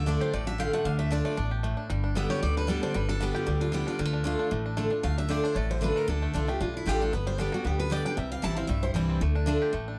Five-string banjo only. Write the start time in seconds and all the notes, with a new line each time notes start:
0.07 D4
0.21 G4
0.34 A3
0.47 D4
0.60 G4
0.74 A3
0.87 D4
0.99 A3
1.12 D4
1.25 A3
1.37 D4
1.51 G4
1.63 A3
1.77 D4
1.90 G3
2.04 D4
2.16 B3
2.30 G4
2.43 G3
2.57 D4
2.68 G3
2.83 D4
2.95 G3
3.09 D4
3.20 B3
3.35 G4
3.47 G3
3.61 D4
3.72 G3
3.87 D4
3.99 G3
4.05 A3
4.13 D4
4.25 D4
4.39 D4
4.52 A3
4.66 D4
4.77 A3
4.91 D4
5.03 A3
5.18 D4
5.30 G4
5.44 D4
5.57 A3
5.70 D3
5.82 D4
5.96 A3
6.09 D4
6.22 A3
6.35 D4
6.48 A3
6.61 D4
6.74 D4
6.87 G4
7.00 D4
7.13 B3
7.27 G3
7.39 D4
7.52 G3
7.66 B3
7.79 D4
7.92 G4
8.05 D4
8.18 G3
8.44 E4
8.57 C4
8.69 G3
8.84 E4
8.96 G3
9.09 C4
9.22 A3
9.35 D4
9.48 D4
9.62 G4
9.73 A3
9.88 D4